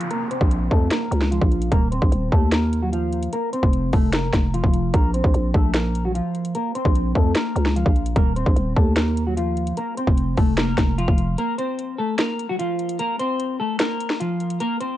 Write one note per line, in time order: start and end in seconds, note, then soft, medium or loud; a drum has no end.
0.00 closed hi-hat medium
0.00 downlifter medium
0.11 0.28 A#3 medium
0.11 0.27 A#4 loud
0.11 closed hi-hat medium
0.31 0.69 C4 medium
0.31 0.69 C5 medium
0.31 closed hi-hat medium
0.41 0.70 A#1 loud
0.41 kick medium
0.51 closed hi-hat medium
0.71 0.90 F2 loud
0.71 0.88 A3 medium
0.71 0.88 A4 medium
0.71 kick medium
0.91 1.29 A#3 medium
0.91 1.29 A#4 medium
0.91 snare loud
0.91 closed hi-hat medium
1.11 1.40 C#2 loud
1.11 closed hi-hat medium
1.21 snare medium
1.31 1.70 F3 medium
1.31 1.69 F4 medium
1.31 closed hi-hat medium
1.41 1.70 A#1 loud
1.41 kick medium
1.52 closed hi-hat soft
1.62 closed hi-hat medium
1.72 2.01 D#1 loud
1.72 1.89 A#3 medium
1.72 1.88 A#4 loud
1.72 kick loud
1.72 closed hi-hat medium
1.92 2.30 C4 medium
1.92 2.30 C5 medium
1.92 closed hi-hat medium
2.02 2.11 A#1 loud
2.02 kick medium
2.12 2.31 D#1 loud
2.12 closed hi-hat medium
2.32 3.29 D#2 loud
2.32 2.49 A3 medium
2.32 2.49 A4 medium
2.32 kick medium
2.52 2.81 A#3 medium
2.52 2.81 A#4 medium
2.52 snare loud
2.52 closed hi-hat medium
2.73 closed hi-hat medium
2.82 2.91 F#3 medium
2.82 2.91 F#4 medium
2.93 3.31 F3 medium
2.93 3.30 F4 medium
2.93 closed hi-hat medium
3.13 closed hi-hat soft
3.23 closed hi-hat medium
3.33 3.50 A#3 medium
3.33 3.50 A#4 loud
3.33 closed hi-hat medium
3.53 3.91 C4 medium
3.53 3.91 C5 medium
3.53 closed hi-hat medium
3.63 3.92 F1 loud
3.63 kick medium
3.73 closed hi-hat medium
3.93 4.32 F1 loud
3.93 4.10 A3 medium
3.93 4.10 A4 medium
3.93 kick loud
3.93 open hi-hat medium
4.13 4.51 A#3 medium
4.13 4.51 A#4 medium
4.13 snare loud
4.13 closed hi-hat medium
4.33 4.62 F1 loud
4.33 kick medium
4.33 snare medium
4.33 closed hi-hat medium
4.54 4.92 F3 medium
4.54 4.92 F4 medium
4.54 closed hi-hat medium
4.64 4.93 F1 loud
4.64 kick medium
4.74 closed hi-hat medium
4.94 5.23 A#1 loud
4.94 5.11 A#3 medium
4.94 5.11 A#4 loud
4.94 kick loud
4.94 closed hi-hat medium
5.14 5.52 C4 medium
5.14 5.52 C5 medium
5.14 closed hi-hat medium
5.24 5.33 A#1 loud
5.24 kick medium
5.34 5.53 A#1 loud
5.34 closed hi-hat medium
5.54 6.22 A#1 loud
5.54 5.71 A3 medium
5.54 5.71 A4 medium
5.54 kick medium
5.74 6.03 A#3 medium
5.74 6.03 A#4 medium
5.74 snare loud
5.74 closed hi-hat medium
5.95 closed hi-hat medium
6.05 6.14 F#3 medium
6.05 6.13 F#4 medium
6.15 6.53 F3 medium
6.15 6.53 F4 medium
6.15 closed hi-hat medium
6.35 closed hi-hat soft
6.45 closed hi-hat medium
6.55 6.72 A#3 medium
6.55 6.72 A#4 loud
6.55 closed hi-hat medium
6.75 7.13 C4 medium
6.75 7.13 C5 medium
6.75 closed hi-hat medium
6.85 7.14 A#1 loud
6.85 kick medium
6.95 closed hi-hat medium
7.15 7.35 F2 loud
7.15 7.33 A3 medium
7.15 7.32 A4 medium
7.15 kick medium
7.35 7.74 A#3 medium
7.35 7.73 A#4 medium
7.35 snare loud
7.35 closed hi-hat medium
7.56 7.85 C#2 loud
7.56 closed hi-hat medium
7.66 snare medium
7.76 8.14 F3 medium
7.76 8.14 F4 medium
7.76 closed hi-hat medium
7.86 8.15 A#1 loud
7.86 kick medium
7.96 closed hi-hat soft
8.06 closed hi-hat medium
8.16 8.45 D#1 loud
8.16 8.33 A#3 medium
8.16 8.33 A#4 loud
8.16 kick loud
8.16 closed hi-hat medium
8.36 8.74 C4 medium
8.36 8.74 C5 medium
8.36 closed hi-hat medium
8.46 8.56 A#1 loud
8.46 kick medium
8.56 8.76 D#1 loud
8.56 closed hi-hat medium
8.76 9.73 D#2 loud
8.76 8.93 A3 medium
8.76 8.93 A4 medium
8.76 kick medium
8.96 9.25 A#3 medium
8.96 9.25 A#4 medium
8.96 snare loud
8.96 closed hi-hat medium
9.17 closed hi-hat medium
9.27 9.36 F#3 medium
9.27 9.35 F#4 medium
9.37 9.75 F3 medium
9.37 9.75 F4 medium
9.37 closed hi-hat medium
9.57 closed hi-hat soft
9.67 closed hi-hat medium
9.77 9.94 A#3 medium
9.77 9.94 A#4 loud
9.77 closed hi-hat medium
9.97 10.36 C4 medium
9.97 10.35 C5 medium
9.97 closed hi-hat medium
10.07 10.36 F1 loud
10.07 kick medium
10.18 closed hi-hat medium
10.37 10.76 F1 loud
10.37 10.55 A3 medium
10.37 10.54 A4 medium
10.37 kick medium
10.37 open hi-hat medium
10.57 10.96 A#3 medium
10.57 10.95 A#4 medium
10.57 snare loud
10.57 closed hi-hat medium
10.78 11.07 F1 loud
10.78 kick loud
10.78 snare medium
10.78 closed hi-hat medium
10.98 11.36 F3 medium
10.98 11.36 F4 medium
10.98 closed hi-hat medium
11.08 11.37 F1 loud
11.08 kick medium
11.18 closed hi-hat medium
11.38 11.55 A#3 medium
11.38 11.55 A#4 loud
11.38 closed hi-hat medium
11.58 11.96 C4 medium
11.58 11.96 C5 medium
11.58 closed hi-hat medium
11.79 closed hi-hat medium
11.98 12.16 A3 medium
11.98 12.15 A4 medium
12.18 12.48 A#3 medium
12.18 12.47 A#4 medium
12.18 snare loud
12.18 closed hi-hat medium
12.39 closed hi-hat medium
12.49 12.58 F#3 medium
12.49 12.57 F#4 medium
12.59 12.97 F3 medium
12.59 12.97 F4 medium
12.59 closed hi-hat medium
12.79 closed hi-hat soft
12.89 closed hi-hat medium
12.99 13.16 A#3 medium
12.99 13.16 A#4 loud
12.99 closed hi-hat medium
13.19 13.58 C4 medium
13.19 13.57 C5 medium
13.19 closed hi-hat medium
13.40 closed hi-hat medium
13.60 13.77 A3 medium
13.60 13.76 A4 medium
13.79 14.18 A#3 medium
13.79 14.18 A#4 medium
13.79 snare loud
13.79 closed hi-hat medium
14.00 closed hi-hat medium
14.10 snare medium
14.20 14.58 F3 medium
14.20 14.58 F4 medium
14.20 closed hi-hat medium
14.40 closed hi-hat soft
14.50 closed hi-hat medium
14.60 14.77 A#3 medium
14.60 14.77 A#4 loud
14.60 closed hi-hat medium
14.80 14.97 C4 medium
14.80 14.97 C5 medium
14.80 closed hi-hat medium